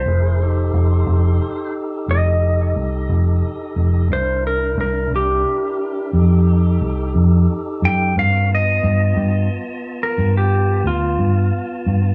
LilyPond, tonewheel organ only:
\new Staff \with { instrumentName = "Tonewheel organ" } { \time 12/8 \key f \major \tempo 4. = 59 <e' aes' bes'>8 <ees' g' a'>1~ <ees' g' a'>4. | <d' e' bes'>2. <ees' g' a'>2. | <c' fis' bes'>8 <b f' a''>1~ <b f' a''>4. | }